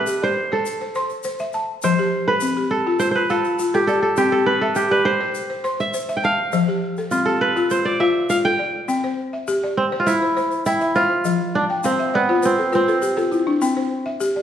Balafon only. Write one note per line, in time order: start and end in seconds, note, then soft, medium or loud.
0.00 0.36 E5 medium
0.07 0.36 G4 medium
0.22 0.66 D5 medium
0.52 0.80 C5 medium
0.81 0.94 C5 medium
0.95 1.24 C5 medium
0.95 1.40 C6 medium
1.25 1.69 C5 medium
1.40 1.69 E5 medium
1.54 1.98 A5 medium
1.84 2.13 F3 medium
1.84 2.28 C5 medium
1.99 2.42 G4 medium
2.28 2.71 A4 medium
2.42 2.71 C4 medium
2.57 3.00 G4 medium
2.87 3.15 F4 medium
3.16 3.29 F4 medium
3.30 3.58 F4 medium
3.30 3.74 F5 medium
3.59 4.03 F4 medium
3.74 4.03 A4 medium
3.89 4.33 D5 medium
4.18 4.47 C4 medium
4.18 4.62 G5 medium
4.62 5.06 E5 medium
4.76 5.06 G4 medium
4.91 5.35 D5 medium
5.20 5.49 C5 medium
5.50 5.63 C5 medium
5.64 5.93 C5 medium
5.64 6.09 C6 medium
5.94 6.39 C5 medium
6.09 6.38 E5 medium
6.24 6.68 A5 medium
6.53 6.82 F3 medium
6.53 6.97 C5 medium
6.68 7.12 G4 medium
6.98 7.41 A4 medium
7.12 7.41 C4 medium
7.27 7.71 G4 medium
7.56 7.85 F4 medium
7.86 7.99 F4 medium
8.00 8.29 F4 medium
8.00 8.45 F5 medium
8.30 8.74 F4 medium
8.45 8.74 A4 medium
8.59 9.04 D5 medium
8.88 9.18 C4 medium
8.88 9.33 G5 medium
9.04 9.48 C5 medium
9.33 9.77 E5 medium
9.48 9.77 G4 medium
9.64 10.07 D5 medium
9.92 10.21 C5 medium
10.22 10.35 C5 medium
10.37 10.66 C5 medium
10.66 11.11 G5 medium
10.81 11.10 E5 medium
10.96 11.40 C5 medium
11.25 11.54 F3 medium
11.70 11.97 G5 medium
11.84 12.13 C4 medium
11.84 12.11 F5 medium
11.99 12.27 E5 medium
12.14 12.41 D5 medium
12.29 12.58 F4 medium
12.29 12.56 C5 medium
12.43 12.70 B4 medium
12.58 12.86 A4 medium
12.72 13.02 F4 medium
12.72 13.00 B4 medium
12.88 13.15 A4 medium
13.02 13.29 G4 medium
13.17 13.44 F4 medium
13.17 13.46 A4 medium
13.32 13.59 E4 medium
13.47 13.74 D4 medium
13.61 13.91 C4 medium
13.61 14.06 G5 medium
13.77 14.20 C5 medium
14.06 14.42 E5 medium
14.20 14.42 G4 medium
14.36 14.42 D5 medium